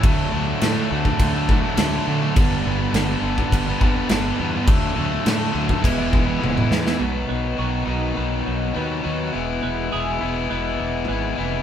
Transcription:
<<
  \new Staff \with { instrumentName = "Clean electric guitar" } { \time 4/4 \key b \dorian \tempo 4 = 103 r1 | r1 | r1 | b,8 b8 fis'8 dis'8 b8 fis8 b8 fis8 |
e,8 b8 gis'8 e'8 b8 e8 b8 e8 | }
  \new Staff \with { instrumentName = "Distorted electric guitar" } { \time 4/4 \key b \dorian <d fis a d'>8 <d fis a d'>16 <fis a d'>16 <d fis a d'>8. <fis a d'>16 <d fis a d'>16 <fis a d'>16 <d fis a d'>16 <fis a d'>16 <d fis a d'>8 <d fis a d'>16 <fis a d'>16 | <g, d g b d'>8 <d g b d'>16 <g b d'>16 <g, d g b d'>8. <g b d'>16 <d g b d'>16 <g b d'>16 <d g b d'>16 <g b d'>16 <g, d g b d'>8 <d g b d'>16 <g b d'>16 | <d fis a d'>8 <d fis a d'>16 <fis a d'>16 <d fis a d'>8. <fis a d'>16 <e gis b e'>16 <gis b e'>16 <e gis b e'>16 <gis b e'>16 <e gis b e'>8 <e gis b e'>16 <gis b e'>16 | r1 |
r1 | }
  \new Staff \with { instrumentName = "Overdriven electric guitar" } { \time 4/4 \key b \dorian <d fis a d'>8 <d fis a d'>8 <d fis a d'>16 <fis a d'>16 <d fis a d'>16 <fis a d'>8 <fis a d'>16 <d fis a d'>16 <fis a d'>16 <d fis a d'>8 <d fis a d'>16 <fis a d'>16 | <g, d g b d'>8 <d g b d'>8 <g, d g b d'>16 <g b d'>16 <d g b d'>16 <g b d'>8 <g b d'>16 <d g b d'>16 <g b d'>16 <g, d g b d'>8 <d g b d'>16 <g b d'>16 | <d fis a d'>8 <d fis a d'>8 <d fis a d'>16 <fis a d'>16 <d fis a d'>16 <fis a d'>16 <e gis b e'>16 <gis b e'>16 <e gis b e'>16 <gis b e'>16 <e gis b e'>8 <e gis b e'>16 <gis b e'>16 | <b, dis fis b dis'>4 <b, dis fis b dis'>8 <b, dis fis b dis'>8 <b, dis fis b dis'>4 <b, dis fis b dis'>8 <b, dis fis b dis'>8 |
<e gis b e'>4 <e gis b e'>8 <e gis b e'>8 <e gis b e'>4 <e gis b e'>8 <e gis b e'>8 | }
  \new Staff \with { instrumentName = "Fingered electric bass" } { \clef bass \time 4/4 \key b \dorian d,8 d,8 a,8 d,8 d,4 d,8 d8 | g,,8 g,,8 g,,8 g,,8 g,,8 g,,8 g,,8 e,8 | d,8 d,8 a,8 d,8 e,,4 e,,8 e,8 | b,,8 b,,8 b,,8 b,,8 b,,8 b,,8 dis,8 dis,8 |
e,,8 e,,8 e,,8 e,,8 e,,8 e,,8 gis,,8 f,,8 | }
  \new DrumStaff \with { instrumentName = "Drums" } \drummode { \time 4/4 <cymc bd>4 <cymc sn>8. bd16 <cymc bd>8 bd8 <cymc sn>4 | <cymc bd>4 <cymc sn>8. bd16 <cymc bd>8 bd8 <cymc sn>4 | <cymc bd>4 <cymc sn>8. bd16 <cymc bd>8 bd8 tommh16 toml16 sn16 sn16 | r4 r4 r4 r4 |
r4 r4 r4 r4 | }
>>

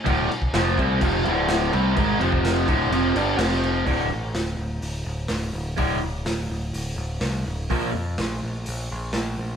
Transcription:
<<
  \new Staff \with { instrumentName = "Overdriven electric guitar" } { \clef bass \time 4/4 \key d \minor \tempo 4 = 126 <d, a, d>8 r8 <f, c f>8 <c g c'>8 <f, c f>8 <d, a, d>4 <c g c'>8 | <gis, ees gis>8 <f, c f>4 <d, a, d>8 <f, c f>8 <g, d g>8 <f, c f>4 | <d, a, d>8 r2. r8 | <d, a, d>8 r2. r8 |
<bes, f bes>8 r2. r8 | }
  \new Staff \with { instrumentName = "Picked electric bass" } { \clef bass \time 4/4 \key d \minor d,,8 r8 f,,8 c,8 f,,8 d,,4 c,8 | gis,,8 f,,4 d,,8 f,,8 g,,8 f,,4 | d,,8 a,,8 d,,8 d,,8 d,,8 d,,8 d,,8 d,,8 | d,,8 d,,8 d,,8 d,,8 d,,8 d,,8 c,8 d,,8 |
bes,,8 f,8 bes,,8 bes,,8 bes,,8 bes,,8 bes,,8 bes,,8 | }
  \new DrumStaff \with { instrumentName = "Drums" } \drummode { \time 4/4 <cymc bd>8 cymc16 bd16 <cymc sn>8 <cymc bd>8 <cymc bd>8 cymc8 <cymc sn>8 cymc8 | <cymc bd>8 cymc16 bd16 <cymc sn>8 <cymc bd>8 cymc8 cymc8 <cymc sn>16 sn16 cymc8 | <hho bd>4 <hho sn>4 hho4 <hho sn>4 | <hho bd>4 <hho sn>4 hho4 <hho sn>4 |
<hho bd>4 <hho sn>4 hho4 <hho sn>4 | }
>>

